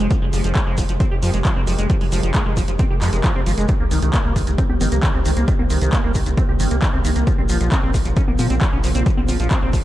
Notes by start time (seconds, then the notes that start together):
0.11 F3, kick, closed hi-hat, shekere
0.22 F1 G#3
0.33 F1 F3, open hi-hat, shekere
0.44 F1 F3, closed hi-hat, shekere
0.55 G#3, kick, clap, closed hi-hat, shekere
0.67 F1 G#3
0.78 F1 F3, kick, open hi-hat, shekere
0.89 F1 F3, closed hi-hat, shekere
1.00 C4, kick, closed hi-hat, shekere
1.11 F1 G4
1.23 F2 F3, open hi-hat, shekere
1.33 F1 G#3, closed hi-hat, shekere
1.45 F3, kick, clap, closed hi-hat, shekere
1.56 F1 C4
1.67 F1 F3, open hi-hat, shekere
1.79 F1 G#3, closed hi-hat, shekere
1.90 F3, kick, closed hi-hat, shekere
2.01 F1 G#3, open hi-hat
2.12 F1 F3, open hi-hat, shekere
2.23 F1 F3, closed hi-hat, shekere
2.34 G#3, kick, clap, closed hi-hat, shekere
2.46 F1 G#3
2.57 F1 F3, kick, open hi-hat, shekere
2.68 F1 F3, closed hi-hat, shekere
2.79 C4, kick, closed hi-hat, shekere
2.90 F1 G4
3.02 F2 F3, clap, open hi-hat, shekere
3.13 F1 G#3, closed hi-hat, shekere
3.24 F3, kick, clap, closed hi-hat, shekere
3.35 F1 C4
3.46 G1 F3, open hi-hat, shekere
3.58 F1 G#3, closed hi-hat, shekere
3.68 D#3, kick, closed hi-hat, shekere
3.80 C2 A#3
3.91 C2 D#3, open hi-hat, shekere
4.02 C2 D#3, closed hi-hat, shekere
4.13 A#3, kick, clap, closed hi-hat, shekere
4.25 C2 A#3
4.36 C2 D#3, kick, open hi-hat, shekere
4.47 C2 D#3, closed hi-hat, shekere
4.58 C4, kick, closed hi-hat, shekere
4.69 C2 G4, high conga
4.81 G1 D#3, open hi-hat, high conga, shekere
4.92 C2 A#3, closed hi-hat, shekere
5.03 D#3, kick, clap, closed hi-hat, shekere
5.14 C2 C4
5.25 C2 D#3, open hi-hat, shekere
5.37 C2 A#3, closed hi-hat, shekere
5.48 D#3, kick, closed hi-hat, shekere
5.59 C2 A#3, high conga
5.70 C2 D#3, open hi-hat, shekere
5.81 C2 D#3, closed hi-hat, shekere
5.93 A#3, kick, clap, closed hi-hat, shekere
6.04 C2 A#3
6.15 C2 D#3, kick, open hi-hat, shekere
6.26 C2 D#3, closed hi-hat, shekere
6.38 C4, kick, closed hi-hat, shekere
6.49 C2 G4
6.60 G1 D#3, open hi-hat, shekere
6.71 C2 A#3, closed hi-hat, shekere
6.82 D#3, kick, clap, closed hi-hat, shekere
6.93 C2 C4
7.05 C2 D#3, open hi-hat, shekere
7.16 C2 A#3, closed hi-hat, shekere
7.27 F3, kick, closed hi-hat, shekere
7.38 A#1 C4
7.49 A#1 F3, open hi-hat, shekere
7.61 A#1 F3, closed hi-hat, shekere
7.72 C4, kick, clap, closed hi-hat, shekere
7.83 A#1 C4
7.94 A#1 F3, kick, open hi-hat, shekere
8.05 A#1 F3, closed hi-hat, shekere
8.17 C#4, kick, closed hi-hat, shekere
8.28 A#1 A#3, high conga
8.39 A#2 F3, open hi-hat, high conga, shekere
8.50 A#1 C4, closed hi-hat, shekere
8.61 F3, kick, clap, closed hi-hat, shekere
8.73 A#1 C#4
8.84 A#1 F3, open hi-hat, shekere
8.95 A#1 C4, closed hi-hat, shekere
9.06 F3, kick, closed hi-hat, shekere
9.17 A#1 C4, high conga
9.28 A#1 F3, open hi-hat, high conga, shekere
9.40 A#1 F3, closed hi-hat, shekere
9.51 C4, kick, clap, closed hi-hat, shekere
9.62 A#1 C4
9.73 A#1 F3, kick, open hi-hat, shekere